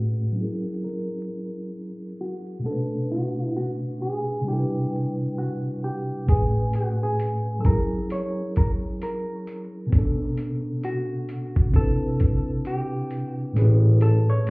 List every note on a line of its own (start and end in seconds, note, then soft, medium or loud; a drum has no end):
0.00 0.36 A2 medium
0.00 0.37 A3 medium
0.00 0.34 C#4 medium
0.00 0.84 F#4 medium
0.00 0.38 G#4 medium
0.00 0.39 B4 medium
0.32 2.58 F#3 medium
0.32 2.60 C#4 medium
0.38 2.61 E4 medium
0.38 2.63 G#4 medium
0.44 2.64 A#4 medium
0.84 2.20 A#4 medium
2.21 2.66 F#4 medium
2.59 4.40 B2 medium
2.59 4.42 A3 soft
2.65 4.43 C#4 soft
2.65 4.45 D4 medium
2.65 3.11 A4 medium
2.71 4.46 B4 medium
3.11 3.53 F#4 medium
3.57 4.02 F#4 medium
4.02 4.48 G#4 medium
4.41 6.22 C3 medium
4.41 6.24 G3 medium
4.47 6.25 D4 medium
4.47 6.26 E4 medium
4.47 5.38 G4 medium
4.53 4.58 A4 medium
4.59 6.30 B4 medium
5.38 5.84 F#4 medium
5.84 6.26 G4 medium
6.26 7.64 A2 medium
6.26 7.64 A3 soft
6.26 7.61 C#4 medium
6.26 6.75 G#4 medium
6.26 kick loud
6.26 closed hi-hat medium
6.30 7.66 G#4 soft
6.30 7.66 B4 medium
6.73 7.03 F#4 medium
6.73 closed hi-hat soft
7.03 7.60 G#4 medium
7.20 closed hi-hat medium
7.59 9.85 F#3 medium
7.59 9.87 C#4 medium
7.59 7.65 A4 medium
7.65 9.88 E4 medium
7.65 9.90 G#4 medium
7.65 8.08 A#4 medium
7.65 kick medium
7.65 closed hi-hat medium
7.71 9.91 A#4 medium
8.10 8.53 C#5 loud
8.10 closed hi-hat medium
8.56 8.70 A#4 medium
8.56 kick medium
8.56 closed hi-hat medium
9.02 9.71 A#4 medium
9.02 closed hi-hat medium
9.47 closed hi-hat medium
9.87 11.67 B2 medium
9.87 11.69 B3 medium
9.92 11.71 C#4 medium
9.92 11.72 D4 medium
9.92 kick loud
9.92 closed hi-hat medium
9.98 11.74 A4 medium
10.37 closed hi-hat medium
10.83 11.76 F#4 medium
10.83 closed hi-hat medium
11.29 closed hi-hat medium
11.56 kick medium
11.69 13.49 C3 medium
11.69 13.51 C4 medium
11.74 13.52 D4 medium
11.74 12.67 A4 loud
11.74 kick medium
11.74 closed hi-hat medium
11.78 13.54 E4 soft
11.78 13.55 B4 medium
12.20 kick medium
12.20 closed hi-hat medium
12.65 13.35 G4 medium
12.65 closed hi-hat medium
13.11 closed hi-hat medium
13.53 14.25 A1 loud
13.53 14.50 A2 medium
13.53 14.50 A3 medium
13.53 14.50 C#4 medium
13.53 closed hi-hat medium
13.57 14.50 G#4 medium
13.57 14.50 B4 medium
14.01 14.30 A4 loud
14.01 closed hi-hat medium
14.30 14.50 C#5 loud
14.47 closed hi-hat medium